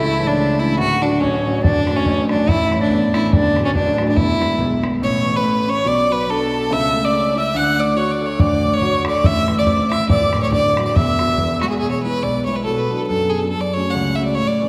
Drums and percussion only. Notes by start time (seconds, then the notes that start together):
1.64 bodhran
1.87 bodhran
2.06 bodhran
2.29 bodhran
2.48 bodhran
2.72 bodhran
2.90 bodhran
3.14 bodhran
3.33 bodhran
3.56 bodhran
3.75 bodhran
3.98 bodhran
4.17 bodhran
4.42 bodhran
4.60 bodhran
4.84 bodhran
8.39 bodhran
8.81 bodhran
9.05 bodhran
9.24 bodhran
9.48 bodhran
9.67 bodhran
9.92 bodhran
10.09 bodhran
10.33 bodhran
10.52 bodhran
10.77 bodhran
10.96 bodhran
11.19 bodhran
11.38 bodhran
11.62 bodhran